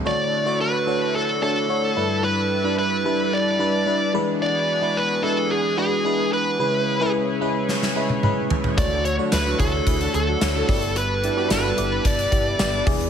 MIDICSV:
0, 0, Header, 1, 7, 480
1, 0, Start_track
1, 0, Tempo, 545455
1, 44, Time_signature, 4, 2, 24, 8
1, 11527, End_track
2, 0, Start_track
2, 0, Title_t, "Lead electric guitar"
2, 0, Program_c, 0, 29
2, 62, Note_on_c, 0, 74, 106
2, 500, Note_off_c, 0, 74, 0
2, 538, Note_on_c, 0, 71, 96
2, 1015, Note_off_c, 0, 71, 0
2, 1018, Note_on_c, 0, 69, 93
2, 1235, Note_off_c, 0, 69, 0
2, 1258, Note_on_c, 0, 69, 87
2, 1970, Note_off_c, 0, 69, 0
2, 1973, Note_on_c, 0, 71, 99
2, 2416, Note_off_c, 0, 71, 0
2, 2452, Note_on_c, 0, 71, 86
2, 2934, Note_on_c, 0, 74, 90
2, 2942, Note_off_c, 0, 71, 0
2, 3614, Note_off_c, 0, 74, 0
2, 3893, Note_on_c, 0, 74, 109
2, 4374, Note_on_c, 0, 71, 94
2, 4383, Note_off_c, 0, 74, 0
2, 4605, Note_off_c, 0, 71, 0
2, 4608, Note_on_c, 0, 69, 91
2, 4850, Note_off_c, 0, 69, 0
2, 4853, Note_on_c, 0, 68, 92
2, 5080, Note_off_c, 0, 68, 0
2, 5090, Note_on_c, 0, 68, 90
2, 5534, Note_off_c, 0, 68, 0
2, 5572, Note_on_c, 0, 71, 86
2, 6253, Note_off_c, 0, 71, 0
2, 7729, Note_on_c, 0, 74, 116
2, 7962, Note_off_c, 0, 74, 0
2, 7966, Note_on_c, 0, 73, 102
2, 8030, Note_off_c, 0, 73, 0
2, 8205, Note_on_c, 0, 71, 91
2, 8428, Note_off_c, 0, 71, 0
2, 8444, Note_on_c, 0, 69, 96
2, 8920, Note_off_c, 0, 69, 0
2, 8931, Note_on_c, 0, 69, 96
2, 9652, Note_off_c, 0, 69, 0
2, 9656, Note_on_c, 0, 71, 99
2, 10097, Note_off_c, 0, 71, 0
2, 10137, Note_on_c, 0, 71, 82
2, 10618, Note_on_c, 0, 74, 87
2, 10625, Note_off_c, 0, 71, 0
2, 11296, Note_off_c, 0, 74, 0
2, 11527, End_track
3, 0, Start_track
3, 0, Title_t, "Analog polysynth"
3, 0, Program_c, 1, 90
3, 7846, Note_on_c, 1, 62, 76
3, 7846, Note_on_c, 1, 66, 74
3, 7846, Note_on_c, 1, 69, 79
3, 7941, Note_off_c, 1, 62, 0
3, 7941, Note_off_c, 1, 66, 0
3, 7941, Note_off_c, 1, 69, 0
3, 8084, Note_on_c, 1, 62, 83
3, 8084, Note_on_c, 1, 66, 91
3, 8085, Note_on_c, 1, 54, 81
3, 8180, Note_off_c, 1, 62, 0
3, 8180, Note_off_c, 1, 66, 0
3, 8181, Note_off_c, 1, 54, 0
3, 8325, Note_on_c, 1, 54, 83
3, 8325, Note_on_c, 1, 62, 86
3, 8325, Note_on_c, 1, 66, 96
3, 8420, Note_off_c, 1, 62, 0
3, 8421, Note_off_c, 1, 54, 0
3, 8421, Note_off_c, 1, 66, 0
3, 8446, Note_on_c, 1, 64, 77
3, 8446, Note_on_c, 1, 71, 80
3, 8447, Note_on_c, 1, 68, 77
3, 8541, Note_off_c, 1, 64, 0
3, 8541, Note_off_c, 1, 71, 0
3, 8542, Note_off_c, 1, 68, 0
3, 8685, Note_on_c, 1, 64, 90
3, 8686, Note_on_c, 1, 68, 92
3, 8686, Note_on_c, 1, 71, 99
3, 8781, Note_off_c, 1, 64, 0
3, 8781, Note_off_c, 1, 68, 0
3, 8781, Note_off_c, 1, 71, 0
3, 8804, Note_on_c, 1, 69, 87
3, 8805, Note_on_c, 1, 62, 80
3, 8806, Note_on_c, 1, 66, 87
3, 8900, Note_off_c, 1, 69, 0
3, 8901, Note_off_c, 1, 62, 0
3, 8901, Note_off_c, 1, 66, 0
3, 9046, Note_on_c, 1, 66, 104
3, 9047, Note_on_c, 1, 54, 93
3, 9047, Note_on_c, 1, 62, 90
3, 9141, Note_off_c, 1, 66, 0
3, 9142, Note_off_c, 1, 54, 0
3, 9142, Note_off_c, 1, 62, 0
3, 9284, Note_on_c, 1, 62, 93
3, 9284, Note_on_c, 1, 66, 88
3, 9284, Note_on_c, 1, 69, 105
3, 9476, Note_off_c, 1, 62, 0
3, 9476, Note_off_c, 1, 66, 0
3, 9476, Note_off_c, 1, 69, 0
3, 9884, Note_on_c, 1, 67, 106
3, 9885, Note_on_c, 1, 62, 89
3, 9885, Note_on_c, 1, 64, 94
3, 9980, Note_off_c, 1, 62, 0
3, 9980, Note_off_c, 1, 64, 0
3, 9980, Note_off_c, 1, 67, 0
3, 10004, Note_on_c, 1, 62, 92
3, 10005, Note_on_c, 1, 66, 99
3, 10006, Note_on_c, 1, 59, 92
3, 10100, Note_off_c, 1, 62, 0
3, 10100, Note_off_c, 1, 66, 0
3, 10101, Note_off_c, 1, 59, 0
3, 10127, Note_on_c, 1, 62, 99
3, 10127, Note_on_c, 1, 66, 99
3, 10127, Note_on_c, 1, 69, 107
3, 10318, Note_off_c, 1, 62, 0
3, 10318, Note_off_c, 1, 66, 0
3, 10318, Note_off_c, 1, 69, 0
3, 11527, End_track
4, 0, Start_track
4, 0, Title_t, "FM electric piano"
4, 0, Program_c, 2, 5
4, 0, Control_c, 2, 64, 127
4, 41, Note_on_c, 2, 57, 73
4, 45, Note_on_c, 2, 62, 70
4, 46, Note_on_c, 2, 50, 64
4, 48, Note_on_c, 2, 66, 64
4, 50, Note_on_c, 2, 73, 86
4, 56, Control_c, 2, 64, 0
4, 197, Control_c, 2, 64, 127
4, 274, Note_off_c, 2, 57, 0
4, 276, Note_off_c, 2, 62, 0
4, 277, Note_off_c, 2, 66, 0
4, 279, Note_off_c, 2, 73, 0
4, 399, Note_on_c, 2, 57, 73
4, 404, Note_on_c, 2, 62, 67
4, 406, Note_on_c, 2, 66, 68
4, 410, Note_on_c, 2, 73, 83
4, 633, Note_off_c, 2, 57, 0
4, 635, Note_off_c, 2, 62, 0
4, 636, Note_off_c, 2, 66, 0
4, 638, Note_off_c, 2, 73, 0
4, 730, Note_off_c, 2, 50, 0
4, 761, Note_on_c, 2, 57, 81
4, 766, Note_on_c, 2, 62, 72
4, 768, Note_on_c, 2, 66, 66
4, 771, Note_on_c, 2, 73, 83
4, 1071, Note_off_c, 2, 57, 0
4, 1073, Note_off_c, 2, 62, 0
4, 1074, Note_off_c, 2, 66, 0
4, 1076, Note_off_c, 2, 73, 0
4, 1243, Note_on_c, 2, 57, 72
4, 1248, Note_on_c, 2, 62, 71
4, 1251, Note_on_c, 2, 66, 65
4, 1254, Note_on_c, 2, 73, 79
4, 1398, Note_off_c, 2, 57, 0
4, 1400, Note_off_c, 2, 62, 0
4, 1402, Note_off_c, 2, 66, 0
4, 1403, Note_off_c, 2, 73, 0
4, 1483, Note_on_c, 2, 57, 75
4, 1486, Note_on_c, 2, 62, 64
4, 1491, Note_on_c, 2, 66, 68
4, 1493, Note_on_c, 2, 73, 85
4, 1717, Note_off_c, 2, 62, 0
4, 1723, Note_off_c, 2, 57, 0
4, 1724, Note_on_c, 2, 55, 78
4, 1728, Note_off_c, 2, 66, 0
4, 1728, Note_off_c, 2, 73, 0
4, 1728, Note_on_c, 2, 62, 74
4, 1729, Note_on_c, 2, 43, 65
4, 1730, Note_on_c, 2, 64, 70
4, 1732, Note_on_c, 2, 71, 86
4, 1737, Control_c, 2, 64, 0
4, 1888, Control_c, 2, 64, 127
4, 2204, Note_off_c, 2, 55, 0
4, 2206, Note_off_c, 2, 62, 0
4, 2207, Note_off_c, 2, 64, 0
4, 2208, Note_off_c, 2, 71, 0
4, 2322, Note_on_c, 2, 55, 76
4, 2325, Note_on_c, 2, 62, 69
4, 2329, Note_on_c, 2, 64, 69
4, 2334, Note_on_c, 2, 71, 79
4, 2411, Note_off_c, 2, 43, 0
4, 2555, Note_off_c, 2, 55, 0
4, 2556, Note_off_c, 2, 62, 0
4, 2558, Note_off_c, 2, 64, 0
4, 2560, Note_off_c, 2, 71, 0
4, 2680, Note_on_c, 2, 55, 78
4, 2685, Note_on_c, 2, 62, 73
4, 2689, Note_on_c, 2, 64, 74
4, 2692, Note_on_c, 2, 71, 81
4, 2991, Note_off_c, 2, 55, 0
4, 2993, Note_off_c, 2, 62, 0
4, 2995, Note_off_c, 2, 64, 0
4, 2997, Note_off_c, 2, 71, 0
4, 3159, Note_on_c, 2, 55, 74
4, 3161, Note_on_c, 2, 62, 69
4, 3166, Note_on_c, 2, 64, 64
4, 3169, Note_on_c, 2, 71, 84
4, 3316, Note_off_c, 2, 55, 0
4, 3317, Note_off_c, 2, 62, 0
4, 3319, Note_off_c, 2, 64, 0
4, 3321, Note_off_c, 2, 71, 0
4, 3396, Note_on_c, 2, 55, 74
4, 3399, Note_on_c, 2, 62, 67
4, 3401, Note_on_c, 2, 64, 66
4, 3407, Note_on_c, 2, 71, 83
4, 3633, Note_off_c, 2, 62, 0
4, 3636, Note_off_c, 2, 64, 0
4, 3638, Note_off_c, 2, 71, 0
4, 3638, Note_on_c, 2, 56, 91
4, 3640, Note_off_c, 2, 55, 0
4, 3643, Note_on_c, 2, 62, 87
4, 3644, Note_on_c, 2, 52, 75
4, 3647, Note_on_c, 2, 64, 84
4, 3648, Note_on_c, 2, 71, 107
4, 3657, Control_c, 2, 64, 0
4, 3788, Control_c, 2, 64, 127
4, 4121, Note_off_c, 2, 56, 0
4, 4124, Note_off_c, 2, 62, 0
4, 4125, Note_off_c, 2, 64, 0
4, 4126, Note_off_c, 2, 71, 0
4, 4236, Note_on_c, 2, 56, 76
4, 4239, Note_on_c, 2, 62, 67
4, 4241, Note_on_c, 2, 64, 70
4, 4246, Note_on_c, 2, 71, 81
4, 4329, Note_off_c, 2, 52, 0
4, 4471, Note_off_c, 2, 56, 0
4, 4473, Note_off_c, 2, 62, 0
4, 4474, Note_off_c, 2, 64, 0
4, 4476, Note_off_c, 2, 71, 0
4, 4595, Note_on_c, 2, 56, 79
4, 4599, Note_on_c, 2, 62, 71
4, 4603, Note_on_c, 2, 64, 73
4, 4606, Note_on_c, 2, 71, 88
4, 4908, Note_off_c, 2, 56, 0
4, 4910, Note_off_c, 2, 62, 0
4, 4912, Note_off_c, 2, 64, 0
4, 4914, Note_off_c, 2, 71, 0
4, 5075, Note_on_c, 2, 56, 77
4, 5079, Note_on_c, 2, 62, 65
4, 5085, Note_on_c, 2, 64, 71
4, 5086, Note_on_c, 2, 71, 77
4, 5234, Note_off_c, 2, 56, 0
4, 5236, Note_off_c, 2, 62, 0
4, 5239, Note_off_c, 2, 64, 0
4, 5240, Note_off_c, 2, 71, 0
4, 5320, Note_on_c, 2, 56, 73
4, 5323, Note_on_c, 2, 62, 66
4, 5327, Note_on_c, 2, 64, 68
4, 5331, Note_on_c, 2, 71, 81
4, 5631, Note_off_c, 2, 56, 0
4, 5632, Note_off_c, 2, 62, 0
4, 5634, Note_off_c, 2, 64, 0
4, 5636, Note_off_c, 2, 71, 0
4, 5798, Note_on_c, 2, 56, 79
4, 5802, Note_on_c, 2, 49, 67
4, 5802, Note_on_c, 2, 61, 72
4, 5804, Note_on_c, 2, 64, 68
4, 5808, Note_on_c, 2, 71, 83
4, 5816, Control_c, 2, 64, 0
4, 5980, Control_c, 2, 64, 127
4, 6032, Note_off_c, 2, 56, 0
4, 6034, Note_off_c, 2, 61, 0
4, 6035, Note_off_c, 2, 64, 0
4, 6037, Note_off_c, 2, 71, 0
4, 6160, Note_on_c, 2, 56, 85
4, 6164, Note_on_c, 2, 61, 85
4, 6167, Note_on_c, 2, 64, 86
4, 6171, Note_on_c, 2, 71, 99
4, 6393, Note_off_c, 2, 56, 0
4, 6396, Note_off_c, 2, 61, 0
4, 6397, Note_off_c, 2, 64, 0
4, 6399, Note_off_c, 2, 71, 0
4, 6488, Note_off_c, 2, 49, 0
4, 6517, Note_on_c, 2, 56, 94
4, 6520, Note_on_c, 2, 61, 85
4, 6522, Note_on_c, 2, 64, 89
4, 6528, Note_on_c, 2, 71, 98
4, 6829, Note_off_c, 2, 56, 0
4, 6831, Note_off_c, 2, 61, 0
4, 6832, Note_off_c, 2, 64, 0
4, 6835, Note_off_c, 2, 71, 0
4, 7000, Note_on_c, 2, 56, 90
4, 7002, Note_on_c, 2, 61, 85
4, 7007, Note_on_c, 2, 64, 84
4, 7012, Note_on_c, 2, 71, 100
4, 7156, Note_off_c, 2, 56, 0
4, 7157, Note_off_c, 2, 61, 0
4, 7160, Note_off_c, 2, 64, 0
4, 7162, Note_off_c, 2, 71, 0
4, 7240, Note_on_c, 2, 56, 91
4, 7245, Note_on_c, 2, 61, 78
4, 7246, Note_on_c, 2, 64, 77
4, 7252, Note_on_c, 2, 71, 100
4, 7551, Note_off_c, 2, 56, 0
4, 7553, Note_off_c, 2, 61, 0
4, 7554, Note_off_c, 2, 64, 0
4, 7557, Note_off_c, 2, 71, 0
4, 7720, Note_on_c, 2, 57, 73
4, 7723, Note_on_c, 2, 50, 63
4, 7723, Note_on_c, 2, 62, 70
4, 7726, Note_on_c, 2, 66, 68
4, 7729, Note_on_c, 2, 73, 81
4, 7735, Control_c, 2, 64, 0
4, 7899, Control_c, 2, 64, 127
4, 7954, Note_off_c, 2, 57, 0
4, 7955, Note_off_c, 2, 62, 0
4, 7956, Note_off_c, 2, 66, 0
4, 7958, Note_off_c, 2, 73, 0
4, 8077, Note_on_c, 2, 57, 76
4, 8081, Note_on_c, 2, 62, 73
4, 8083, Note_on_c, 2, 66, 67
4, 8088, Note_on_c, 2, 73, 81
4, 8312, Note_off_c, 2, 57, 0
4, 8314, Note_off_c, 2, 62, 0
4, 8315, Note_off_c, 2, 66, 0
4, 8318, Note_off_c, 2, 73, 0
4, 8409, Note_off_c, 2, 50, 0
4, 8440, Note_on_c, 2, 57, 78
4, 8442, Note_on_c, 2, 62, 69
4, 8446, Note_on_c, 2, 66, 68
4, 8449, Note_on_c, 2, 73, 84
4, 8750, Note_off_c, 2, 57, 0
4, 8752, Note_off_c, 2, 62, 0
4, 8754, Note_off_c, 2, 66, 0
4, 8755, Note_off_c, 2, 73, 0
4, 8919, Note_on_c, 2, 57, 74
4, 8925, Note_on_c, 2, 62, 69
4, 8928, Note_on_c, 2, 66, 68
4, 8931, Note_on_c, 2, 69, 81
4, 9076, Note_off_c, 2, 57, 0
4, 9079, Note_off_c, 2, 62, 0
4, 9080, Note_off_c, 2, 66, 0
4, 9082, Note_off_c, 2, 69, 0
4, 9160, Note_on_c, 2, 57, 73
4, 9163, Note_on_c, 2, 62, 68
4, 9169, Note_on_c, 2, 66, 68
4, 9171, Note_on_c, 2, 73, 83
4, 9398, Note_on_c, 2, 59, 82
4, 9401, Note_on_c, 2, 64, 75
4, 9402, Note_off_c, 2, 57, 0
4, 9403, Note_off_c, 2, 62, 0
4, 9403, Note_on_c, 2, 43, 65
4, 9404, Note_on_c, 2, 67, 74
4, 9406, Note_off_c, 2, 66, 0
4, 9408, Note_off_c, 2, 73, 0
4, 9409, Note_on_c, 2, 74, 88
4, 9413, Control_c, 2, 64, 0
4, 9590, Control_c, 2, 64, 127
4, 9881, Note_off_c, 2, 59, 0
4, 9883, Note_off_c, 2, 64, 0
4, 9884, Note_off_c, 2, 67, 0
4, 9886, Note_off_c, 2, 74, 0
4, 10000, Note_on_c, 2, 59, 72
4, 10002, Note_on_c, 2, 64, 69
4, 10004, Note_on_c, 2, 67, 71
4, 10008, Note_on_c, 2, 74, 85
4, 10088, Note_off_c, 2, 43, 0
4, 10233, Note_off_c, 2, 59, 0
4, 10234, Note_off_c, 2, 64, 0
4, 10235, Note_off_c, 2, 67, 0
4, 10238, Note_off_c, 2, 74, 0
4, 10357, Note_on_c, 2, 59, 76
4, 10361, Note_on_c, 2, 64, 71
4, 10364, Note_on_c, 2, 67, 72
4, 10368, Note_on_c, 2, 74, 89
4, 10669, Note_off_c, 2, 59, 0
4, 10671, Note_off_c, 2, 64, 0
4, 10673, Note_off_c, 2, 67, 0
4, 10675, Note_off_c, 2, 74, 0
4, 10833, Note_on_c, 2, 59, 76
4, 10835, Note_on_c, 2, 64, 71
4, 10840, Note_on_c, 2, 67, 70
4, 10843, Note_on_c, 2, 74, 78
4, 10993, Note_off_c, 2, 59, 0
4, 10994, Note_off_c, 2, 64, 0
4, 10996, Note_off_c, 2, 67, 0
4, 10998, Note_off_c, 2, 74, 0
4, 11075, Note_on_c, 2, 59, 78
4, 11076, Note_on_c, 2, 64, 68
4, 11081, Note_on_c, 2, 67, 66
4, 11083, Note_on_c, 2, 74, 82
4, 11304, Note_off_c, 2, 59, 0
4, 11306, Note_off_c, 2, 64, 0
4, 11314, Note_on_c, 2, 59, 94
4, 11315, Note_off_c, 2, 74, 0
4, 11317, Note_on_c, 2, 64, 83
4, 11319, Note_on_c, 2, 52, 79
4, 11320, Note_on_c, 2, 68, 85
4, 11322, Note_off_c, 2, 67, 0
4, 11326, Note_on_c, 2, 74, 107
4, 11335, Control_c, 2, 64, 0
4, 11515, Control_c, 2, 64, 127
4, 11527, Note_off_c, 2, 52, 0
4, 11527, Note_off_c, 2, 59, 0
4, 11527, Note_off_c, 2, 64, 0
4, 11527, Note_off_c, 2, 68, 0
4, 11527, Note_off_c, 2, 74, 0
4, 11527, End_track
5, 0, Start_track
5, 0, Title_t, "Analog synth pad"
5, 0, Program_c, 3, 89
5, 41, Note_on_c, 3, 64, 72
5, 44, Note_on_c, 3, 57, 70
5, 44, Note_on_c, 3, 66, 90
5, 46, Note_on_c, 3, 50, 82
5, 46, Note_on_c, 3, 62, 69
5, 1707, Note_off_c, 3, 57, 0
5, 1707, Note_off_c, 3, 66, 0
5, 1708, Note_off_c, 3, 50, 0
5, 1708, Note_off_c, 3, 62, 0
5, 1723, Note_on_c, 3, 62, 72
5, 1724, Note_on_c, 3, 71, 84
5, 1725, Note_on_c, 3, 55, 78
5, 1725, Note_on_c, 3, 69, 70
5, 3608, Note_off_c, 3, 64, 0
5, 3625, Note_off_c, 3, 55, 0
5, 3625, Note_off_c, 3, 69, 0
5, 3625, Note_off_c, 3, 71, 0
5, 3646, Note_on_c, 3, 59, 72
5, 3647, Note_on_c, 3, 68, 91
5, 3648, Note_on_c, 3, 52, 77
5, 3651, Note_on_c, 3, 66, 69
5, 5768, Note_off_c, 3, 62, 0
5, 5783, Note_off_c, 3, 59, 0
5, 5784, Note_off_c, 3, 52, 0
5, 5784, Note_off_c, 3, 68, 0
5, 5786, Note_off_c, 3, 66, 0
5, 5797, Note_on_c, 3, 64, 70
5, 5798, Note_on_c, 3, 49, 84
5, 5798, Note_on_c, 3, 71, 91
5, 5800, Note_on_c, 3, 73, 76
5, 5801, Note_on_c, 3, 68, 74
5, 7702, Note_off_c, 3, 49, 0
5, 7702, Note_off_c, 3, 71, 0
5, 7703, Note_off_c, 3, 68, 0
5, 7723, Note_on_c, 3, 66, 90
5, 7726, Note_on_c, 3, 57, 77
5, 7727, Note_on_c, 3, 50, 79
5, 9367, Note_off_c, 3, 73, 0
5, 9387, Note_off_c, 3, 66, 0
5, 9388, Note_off_c, 3, 57, 0
5, 9389, Note_off_c, 3, 50, 0
5, 9396, Note_on_c, 3, 69, 76
5, 9398, Note_on_c, 3, 55, 78
5, 9399, Note_on_c, 3, 62, 73
5, 9400, Note_on_c, 3, 71, 88
5, 11285, Note_off_c, 3, 64, 0
5, 11301, Note_off_c, 3, 55, 0
5, 11301, Note_off_c, 3, 69, 0
5, 11302, Note_off_c, 3, 62, 0
5, 11303, Note_off_c, 3, 71, 0
5, 11318, Note_on_c, 3, 59, 73
5, 11318, Note_on_c, 3, 68, 90
5, 11319, Note_on_c, 3, 62, 69
5, 11320, Note_on_c, 3, 52, 83
5, 11320, Note_on_c, 3, 66, 71
5, 11527, Note_off_c, 3, 52, 0
5, 11527, Note_off_c, 3, 59, 0
5, 11527, Note_off_c, 3, 62, 0
5, 11527, Note_off_c, 3, 66, 0
5, 11527, Note_off_c, 3, 68, 0
5, 11527, End_track
6, 0, Start_track
6, 0, Title_t, "Fretless electric bass"
6, 0, Program_c, 4, 35
6, 7725, Note_on_c, 4, 38, 102
6, 8070, Note_off_c, 4, 38, 0
6, 8204, Note_on_c, 4, 38, 95
6, 8377, Note_off_c, 4, 38, 0
6, 8444, Note_on_c, 4, 38, 102
6, 8617, Note_off_c, 4, 38, 0
6, 8683, Note_on_c, 4, 38, 102
6, 8856, Note_off_c, 4, 38, 0
6, 8921, Note_on_c, 4, 38, 97
6, 9095, Note_off_c, 4, 38, 0
6, 9162, Note_on_c, 4, 38, 113
6, 9336, Note_off_c, 4, 38, 0
6, 9404, Note_on_c, 4, 31, 93
6, 9923, Note_off_c, 4, 31, 0
6, 10121, Note_on_c, 4, 31, 96
6, 10295, Note_off_c, 4, 31, 0
6, 10364, Note_on_c, 4, 31, 88
6, 10537, Note_off_c, 4, 31, 0
6, 10603, Note_on_c, 4, 31, 103
6, 10776, Note_off_c, 4, 31, 0
6, 10841, Note_on_c, 4, 31, 105
6, 11015, Note_off_c, 4, 31, 0
6, 11085, Note_on_c, 4, 31, 104
6, 11257, Note_off_c, 4, 31, 0
6, 11324, Note_on_c, 4, 28, 97
6, 11527, Note_off_c, 4, 28, 0
6, 11527, End_track
7, 0, Start_track
7, 0, Title_t, "Drums"
7, 6764, Note_on_c, 9, 38, 59
7, 6852, Note_off_c, 9, 38, 0
7, 6886, Note_on_c, 9, 38, 59
7, 6974, Note_off_c, 9, 38, 0
7, 7124, Note_on_c, 9, 48, 64
7, 7212, Note_off_c, 9, 48, 0
7, 7244, Note_on_c, 9, 47, 84
7, 7332, Note_off_c, 9, 47, 0
7, 7484, Note_on_c, 9, 43, 105
7, 7572, Note_off_c, 9, 43, 0
7, 7604, Note_on_c, 9, 43, 94
7, 7692, Note_off_c, 9, 43, 0
7, 7725, Note_on_c, 9, 36, 108
7, 7725, Note_on_c, 9, 42, 89
7, 7813, Note_off_c, 9, 36, 0
7, 7813, Note_off_c, 9, 42, 0
7, 7967, Note_on_c, 9, 42, 67
7, 8055, Note_off_c, 9, 42, 0
7, 8201, Note_on_c, 9, 54, 67
7, 8203, Note_on_c, 9, 42, 88
7, 8204, Note_on_c, 9, 38, 99
7, 8289, Note_off_c, 9, 54, 0
7, 8291, Note_off_c, 9, 42, 0
7, 8292, Note_off_c, 9, 38, 0
7, 8444, Note_on_c, 9, 36, 98
7, 8444, Note_on_c, 9, 42, 73
7, 8532, Note_off_c, 9, 36, 0
7, 8532, Note_off_c, 9, 42, 0
7, 8683, Note_on_c, 9, 36, 94
7, 8683, Note_on_c, 9, 42, 97
7, 8771, Note_off_c, 9, 36, 0
7, 8771, Note_off_c, 9, 42, 0
7, 8806, Note_on_c, 9, 42, 54
7, 8894, Note_off_c, 9, 42, 0
7, 8926, Note_on_c, 9, 42, 64
7, 9014, Note_off_c, 9, 42, 0
7, 9164, Note_on_c, 9, 42, 86
7, 9164, Note_on_c, 9, 54, 65
7, 9165, Note_on_c, 9, 38, 104
7, 9252, Note_off_c, 9, 42, 0
7, 9252, Note_off_c, 9, 54, 0
7, 9253, Note_off_c, 9, 38, 0
7, 9405, Note_on_c, 9, 36, 110
7, 9408, Note_on_c, 9, 46, 79
7, 9493, Note_off_c, 9, 36, 0
7, 9496, Note_off_c, 9, 46, 0
7, 9526, Note_on_c, 9, 42, 48
7, 9614, Note_off_c, 9, 42, 0
7, 9646, Note_on_c, 9, 42, 92
7, 9734, Note_off_c, 9, 42, 0
7, 9887, Note_on_c, 9, 42, 66
7, 9975, Note_off_c, 9, 42, 0
7, 10123, Note_on_c, 9, 54, 66
7, 10125, Note_on_c, 9, 42, 85
7, 10126, Note_on_c, 9, 38, 105
7, 10211, Note_off_c, 9, 54, 0
7, 10213, Note_off_c, 9, 42, 0
7, 10214, Note_off_c, 9, 38, 0
7, 10365, Note_on_c, 9, 42, 78
7, 10453, Note_off_c, 9, 42, 0
7, 10603, Note_on_c, 9, 36, 94
7, 10603, Note_on_c, 9, 42, 102
7, 10691, Note_off_c, 9, 36, 0
7, 10691, Note_off_c, 9, 42, 0
7, 10726, Note_on_c, 9, 42, 56
7, 10814, Note_off_c, 9, 42, 0
7, 10842, Note_on_c, 9, 36, 88
7, 10843, Note_on_c, 9, 42, 58
7, 10930, Note_off_c, 9, 36, 0
7, 10931, Note_off_c, 9, 42, 0
7, 11082, Note_on_c, 9, 42, 91
7, 11082, Note_on_c, 9, 54, 65
7, 11083, Note_on_c, 9, 38, 102
7, 11170, Note_off_c, 9, 42, 0
7, 11170, Note_off_c, 9, 54, 0
7, 11171, Note_off_c, 9, 38, 0
7, 11323, Note_on_c, 9, 36, 111
7, 11324, Note_on_c, 9, 46, 76
7, 11411, Note_off_c, 9, 36, 0
7, 11412, Note_off_c, 9, 46, 0
7, 11448, Note_on_c, 9, 42, 50
7, 11527, Note_off_c, 9, 42, 0
7, 11527, End_track
0, 0, End_of_file